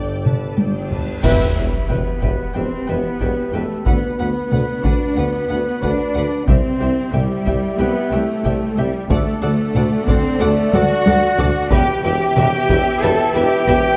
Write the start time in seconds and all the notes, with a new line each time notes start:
Already playing: G1 G2 D4 A4 D5 G5, reverse cymbal
0.25 A4 B4 A5, taiko mid
0.58 G1 G2 A4 D5 G5, taiko high
0.90 A4 B4 A5, taiko low
1.23 E1 E2 E4 G4 B4 E5 G5 B5, concert bass drum, taiko, crash, sub drop
1.56 E1 E2 B4 E5 G5
1.88 E1 E2 B3 B4 E5 G5, taiko mid
2.20 E1 E2 B4 E5 G5, taiko
2.53 E1 E2 C4 G4 C5 E5 G5
2.86 E1 E2 B3 B4 E5 G5
3.20 E1 E2 B4 E5 G5, taiko
3.52 E1 E2 A3 A4 B4 E5 G5
3.85 D2 B3 D4 F#4 B4 F#5, taiko
4.18 D2 B3 B4 F#5
4.51 D2 B4 F#5, taiko mid
4.84 D2 D4 B4 D5 F#5, taiko
5.16 D2 B3 B4 F#5
5.49 D2 B4 F#5
5.81 D2 D4 B4 D5 F#5, taiko
6.14 D2 B4 F#5
6.47 C2 G3 C4 E4 G4 C5 E5 G5, taiko
6.80 C2 G4 E5 G5
7.12 C2 G3 G4 E5 G5, taiko mid
7.46 C2 G4 E5 G5, taiko
7.78 C2 B3 G4 B4 E5 G5
8.11 C2 A3 G4 A4 E5 G5
8.44 C2 G4 E5 G5, taiko
8.77 C2 G3 G4 E5 G5
9.09 D2 A3 D4 A4 D5 F#5, taiko
9.42 D2 A3 A4 D5 F#5
9.75 D2 A4 D5 F#5, taiko mid
10.07 D2 C4 A4 C5 D5 F#5, taiko
10.40 D2 A3 A4 D5 F#5
10.72 D2 F#4 A4 D5 F#5, taiko high
11.06 D2 A4 D5 F#5, taiko high
11.38 D2 A4 D5 F#5, taiko low
11.70 E1 E2 B3 E4 G4 B4 E5 G5, taiko
12.03 E1 E2 G4 B4 E5 G5
12.36 E1 E2 G4 B4 E5, taiko mid
12.69 E1 E2 G4 B4 E5, taiko
13.02 E1 E2 G4 A4 B4 E5 A5
13.34 E1 E2 G4 B4 E5 G5
13.67 E1 E2 G4 B4 E5, taiko